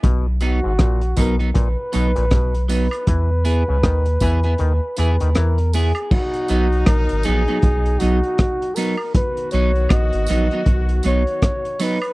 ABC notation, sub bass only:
X:1
M:4/4
L:1/16
Q:"Swing 16ths" 1/4=79
K:B
V:1 name="Sub bass" clef=bass
B,,,3 G,,, A,,,2 B,,,2 A,,, z B,,, A,,, B,,,3 z | E,,3 C,, D,,2 E,,2 D,, z E,, D,, E,,3 z | z2 B,,,2 A,,, G,,, A,,, z B,,,2 B,,, z4 z | z2 B,,,2 A,,, G,,, A,,, z B,,,2 B,,, z4 z |]